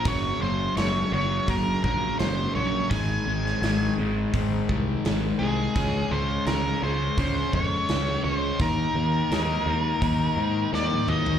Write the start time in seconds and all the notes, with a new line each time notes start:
0.05 F#1 F#2 C#3 F#3 C#5, kick, open hi-hat
0.41 F#1 F#2 C#3 F#3 C5
0.76 F#1 F#2 C#3 F#3 C#5, snare, open hi-hat
1.12 F#1 F#2 C#3 F#3 C#5
1.48 F#1 F#2 C#3 F#3 A#4, kick, open hi-hat
1.84 A#1 F#2 C#3 F#3 A#4, kick
2.19 F#1 F#2 C#3 F#3 C5, snare, open hi-hat
2.55 A#1 F#2 C#3 F#3 C#5
2.90 G#1 G#2 D#3 G#3 G#5, kick, open hi-hat
3.26 G#1 G#2 D#3 G#3
3.46 snare
3.62 G#1 G#2 D#3 G#3, snare, open hi-hat
3.98 G#1 G#2 D#3 G#3
4.34 G#1 G#2 D#3 G#3, kick, open hi-hat
4.69 C2 G#2 D#3 G#3, kick
5.04 G#1 G#2 D#3 G#3, snare, open hi-hat
5.39 C2 G#2 D#3 G#3 G#4
5.75 C#2 C#3 G#3 C#4, kick, open hi-hat
6.10 C#2 C#3 G#3 C#4 C5
6.46 C#2 C#3 G#3 C#4 A#4, snare, open hi-hat
6.82 C#2 C#3 G#3 C#4 C5
7.17 C#2 C#3 G#3 C#4 C5, kick, open hi-hat
7.53 F2 C#3 G#3 C#4 C#5, kick
7.89 C#2 C#3 G#3 C#4, snare, open hi-hat
8.24 C#2 C#3 G#3 C#4 C5
8.60 D#2 D#3 A#3 D#4 A#4, kick, open hi-hat
8.95 D#2 D#3 A#3 D#4
9.31 D#2 D#3 A#3 D#4, snare, open hi-hat
9.66 D#2 D#3 A#3 D#4
10.01 D#2 D#3 A#3 D#4, kick, open hi-hat
10.36 G#2 D#3 A#3 D#4
10.72 D#2 D#3 A#3 D#4 D5, snare
10.91 high tom
11.08 D#2 D#3 A#3 D#4 D#5, mid tom
11.26 floor tom